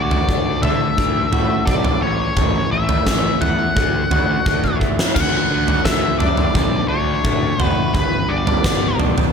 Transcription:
Already playing: picked electric bass D2, clean electric guitar D3 F#4, lead electric guitar D5
0.11 floor tom
0.28 picked electric bass D2, clean electric guitar D4, kick
0.62 picked electric bass D3, clean electric guitar A3, lead electric guitar E5, floor tom, mid tom
0.98 picked electric bass D2, clean electric guitar D4, kick
1.31 picked electric bass A2, clean electric guitar F#4, floor tom
1.66 picked electric bass B1, clean electric guitar D4, lead electric guitar D5, kick
1.85 floor tom
2.01 picked electric bass A1, clean electric guitar A2, lead electric guitar C#5
2.37 picked electric bass A1, clean electric guitar A2, kick, floor tom
2.71 picked electric bass A1, clean electric guitar E4, lead electric guitar E5
2.89 floor tom
3.06 picked electric bass A1, clean electric guitar C#4, kick, snare
3.41 picked electric bass E2, clean electric guitar A3, lead electric guitar F#5, floor tom
3.76 picked electric bass D2, clean electric guitar D3, kick
4.11 picked electric bass D2, clean electric guitar F#4, floor tom
4.46 picked electric bass D2, clean electric guitar D4, kick
4.64 kick
4.80 clean electric guitar A3, kick
4.99 snare
5.15 picked electric bass D2, clean electric guitar D3, lead electric guitar F#5, kick, floor tom, crash
5.50 picked electric bass D2, clean electric guitar D3
5.68 floor tom
5.85 picked electric bass D2, clean electric guitar A3, lead electric guitar E5, kick, snare
6.19 picked electric bass F#2, clean electric guitar D4, lead electric guitar D5, floor tom
6.37 floor tom
6.54 picked electric bass B1, clean electric guitar D3, kick, floor tom
6.88 picked electric bass D2, clean electric guitar D4, lead electric guitar C#5
7.24 picked electric bass D2, clean electric guitar A3, kick, mid tom
7.59 picked electric bass F#1, clean electric guitar F#4, floor tom
7.64 lead electric guitar B4
7.94 picked electric bass G1, clean electric guitar G2, lead electric guitar B4, kick, floor tom
8.29 picked electric bass G1, clean electric guitar G3, lead electric guitar D5
8.47 floor tom
8.63 picked electric bass G1, clean electric guitar B3, kick, snare
8.97 picked electric bass B1, clean electric guitar D4, floor tom
9.18 floor tom

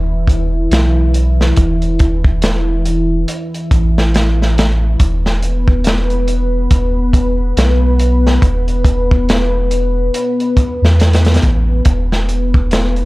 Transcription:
Already playing: sub bass E1, analog synth pad E3 E4
0.27 kick, closed hi-hat
0.71 sub bass B1, snare, closed hi-hat
1.14 closed hi-hat
1.41 snare
1.56 sub bass E1, kick, closed hi-hat
1.82 closed hi-hat
1.99 kick, closed hi-hat
2.24 kick
2.42 snare, closed hi-hat
2.85 closed hi-hat
3.28 closed hi-hat
3.54 closed hi-hat
3.71 sub bass A1, kick, closed hi-hat
3.98 snare
4.14 snare, closed hi-hat
4.42 snare
4.58 snare, closed hi-hat
4.99 sub bass E1, analog synth pad B3 B4, kick, closed hi-hat
5.26 snare
5.42 closed hi-hat
5.68 kick
5.84 snare, closed hi-hat
6.10 closed hi-hat
6.28 closed hi-hat
6.71 sub bass E1, kick, closed hi-hat
7.13 kick, closed hi-hat
7.57 sub bass B1, snare, closed hi-hat
7.99 closed hi-hat
8.27 snare
8.42 sub bass E1, kick, closed hi-hat
8.68 closed hi-hat
8.85 kick, closed hi-hat
9.11 kick
9.29 snare, closed hi-hat
9.71 closed hi-hat
10.14 closed hi-hat
10.40 closed hi-hat
10.57 kick, closed hi-hat
10.82 sub bass E2, snare
11.00 snare, closed hi-hat
11.13 snare, closed hi-hat
11.24 snare, closed hi-hat
11.34 snare, closed hi-hat
11.42 sub bass A1, kick, closed hi-hat
11.85 sub bass E1, kick, closed hi-hat
12.12 snare
12.29 closed hi-hat
12.54 kick
12.71 snare, closed hi-hat
12.96 closed hi-hat

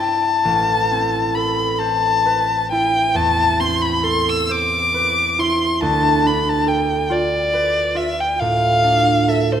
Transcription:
Already playing: harp G2 C4 B4 C5 D5, violin A5
0.00 harp E4
0.45 harp A1
0.92 harp C4
1.35 harp A4, violin B5
1.79 harp C5, violin A5
2.25 harp B4
2.71 harp E4, violin G5
3.14 harp E2, violin A5
3.60 harp C4, violin C6
3.82 violin B5
4.03 harp A4, violin C6
4.30 violin E6
4.49 harp C5, violin D6
4.94 harp B4
5.39 harp E4, violin C6
5.82 harp D2, violin A5
6.24 harp D4, violin B5
6.49 violin A5
6.66 harp A4, violin G5
7.10 harp F4, violin D5
7.53 harp B4
7.95 harp F4, violin E5
8.21 violin G5
8.40 harp A2, violin F5
8.83 harp D4
9.28 harp A4, violin E5
9.53 violin C5

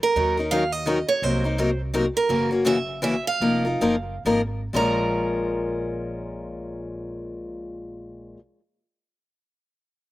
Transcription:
0.03 steel-string acoustic guitar A#4
0.16 upright bass D#2, steel-string acoustic guitar D#3 F#3 C#4 D#4 A#4
0.37 steel-string acoustic guitar C#4 D#4 A#4
0.51 steel-string acoustic guitar D#3 F#3 C#4 D#4 A#4 F5
0.72 steel-string acoustic guitar D#5
0.86 steel-string acoustic guitar D#3 F#3 C#4 D#4 A#4
1.09 steel-string acoustic guitar C#5
1.22 upright bass C2, steel-string acoustic guitar C3 F#3 A#3 D#4 A#4 C5
1.44 steel-string acoustic guitar A#3 D#4 A#4
1.58 steel-string acoustic guitar C3 F#3 A#3 D#4 A#4
1.94 steel-string acoustic guitar C3 F#3 A#3 D#4 A#4
2.17 steel-string acoustic guitar A#4
2.29 upright bass F#1, steel-string acoustic guitar C#3 E3 A#3 C#4 F#4
2.51 steel-string acoustic guitar A#3 C#4 F#4
2.65 steel-string acoustic guitar C#3 E3 A#3 C#4 F#4 E5
3.02 steel-string acoustic guitar C#3 E3 A#3 C#4 F#4 E5
3.27 steel-string acoustic guitar F5
3.40 upright bass F1, steel-string acoustic guitar F3 A#3 D#4 F4 A#4
3.65 steel-string acoustic guitar D#4 F4 A#4
3.81 upright bass F#1, steel-string acoustic guitar F3 A#3 D#4 F4 A#4
4.25 upright bass G#1, steel-string acoustic guitar F3 A#3 D#4 F4 A#4
4.73 upright bass A#1, steel-string acoustic guitar A#2 F3 G#3 C#4 F4 A#4 A#5

